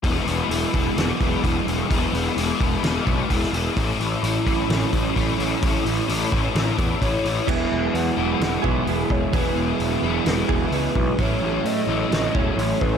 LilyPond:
<<
  \new Staff \with { instrumentName = "Soft synth lead" } { \time 4/4 \key e \major \tempo 4 = 129 r1 | r1 | r1 | r2. cis''4 |
e''4 fis''4 fis''8 e''4 cis''8 | b'4. r4. b'4 | cis''4 dis''4 dis''8 cis''4 b'8 | }
  \new Staff \with { instrumentName = "Clean electric guitar" } { \time 4/4 \key e \major <e fis e' gis'>1~ | <e fis e' gis'>1 | <a, fis cis' e'>1~ | <a, fis cis' e'>1 |
<e fis b e' gis'>2~ <e fis b e' gis'>8 <e fis b e' gis'>8 <e fis b e' gis'>4 | <e fis b e' gis'>2~ <e fis b e' gis'>8 <e fis b e' gis'>8 <e fis b e' gis'>4 | <a, fis cis' e'>2~ <a, fis cis' e'>8 <a, fis cis' e'>8 <a, fis cis' e'>4 | }
  \new Staff \with { instrumentName = "Overdriven electric guitar" } { \time 4/4 \key e \major <e gis b e'>8 <gis b e'>8 <e gis b e'>8 <gis b e'>8 <e gis b e'>8 <gis b e'>8 <e gis b e'>8 <gis b e'>8 | <e gis b e'>8 <gis b e'>8 <e gis b e'>8 <gis b e'>8 <e gis b e'>8 <gis b e'>8 <e gis b e'>8 <gis b e'>8 | <a, e a cis' e'>8 <a cis' e'>8 <e a cis' e'>8 <a cis' e'>8 <a, e a cis' e'>8 <a cis' e'>8 <e a cis' e'>8 <a cis' e'>8 | <a, e a cis' e'>8 <a cis' e'>8 <e a cis' e'>8 <a cis' e'>8 <a, e a cis' e'>8 <a cis' e'>8 <e a cis' e'>8 <a cis' e'>8 |
<e gis b e'>4. <e gis b e'>2~ <e gis b e'>8 | <e gis b e'>4. <e gis b e'>2~ <e gis b e'>8 | <a, e a cis' e'>4. <a, e a cis' e'>2~ <a, e a cis' e'>8 | }
  \new Staff \with { instrumentName = "Picked electric bass" } { \clef bass \time 4/4 \key e \major e,,8 e,,8 e,,8 e,,8 e,,8 e,,8 e,,8 e,,8 | e,,8 e,,8 e,,8 e,,8 e,,8 b,,8 e,,8 e,,8 | a,,8 a,,8 a,,8 a,,8 a,,8 a,,8 a,,8 a,,8 | a,,8 a,,8 a,,8 a,,8 a,,8 e,8 a,,8 a,,8 |
e,,8 e,,8 e,8 e,,8 e,,8 b,,8 e,,8 e,,8 | e,,8 e,,8 e,,8 e,,8 e,,8 e,,8 cis,8 b,,8 | a,,8 a,,8 a,8 a,,8 a,,8 e,,8 a,,8 a,,8 | }
  \new DrumStaff \with { instrumentName = "Drums" } \drummode { \time 4/4 <hho bd>8 hho8 hho8 <hho bd>8 <hho sn>8 <hho bd>8 <hho bd>8 hho8 | <hho bd>8 hho8 hho8 <hho bd>8 <hho sn>8 <hho bd>8 <hho bd>16 sn16 hho8 | <hho bd>8 hho8 hho8 <hho bd>8 <hho sn>8 <hho bd>8 <hho bd>8 hho8 | <hho bd>8 hho8 hho8 <hho bd>8 <hho sn>8 <hho bd>8 <hho bd>8 hho8 |
<cymc bd>4 hho4 <hho sn>8 bd8 hho8 bd8 | <hho bd>4 hho4 <hho sn>8 bd8 hho8 bd8 | <hho bd>4 hho4 <hho sn>8 bd8 hho8 bd8 | }
>>